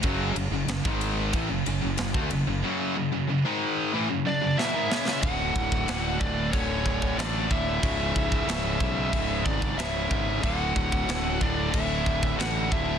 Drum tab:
CC |----------------|----------------|x---x---x---x---|x---x---x---x---|
RD |x-x-x-x-x-x-x-x-|----------------|----------------|----------------|
SD |----o-------o---|------------o-oo|----o-------o---|----o-------o---|
BD |o----o--o----o--|----------------|o-oo--o-o-oo--o-|o-oo--o-o-oo--o-|

CC |x---x---x---x---|
RD |----------------|
SD |----o-------o---|
BD |o-oo--o-o-oo--o-|